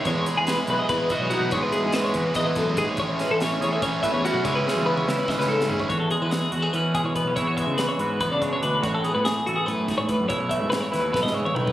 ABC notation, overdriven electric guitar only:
X:1
M:7/8
L:1/8
Q:1/4=143
K:E
V:1 name="Overdriven electric guitar"
[E,G,B,E]2 [E,G,B,E]2 [E,G,B,E] [G,B,E] [E,G,B,E] | [E,G,B,E]2 [E,G,B,E]2 [E,G,B,E] [G,B,E] [E,G,B,E] | [A,,E,A,CE]2 [A,,E,A,CE]2 [E,A,CE] [A,CE] [E,A,CE] | [C,G,CE]2 [C,G,CE]2 [C,G,CE] [G,CE] [C,G,CE] |
z6 z | z6 z | z6 z | z6 z |]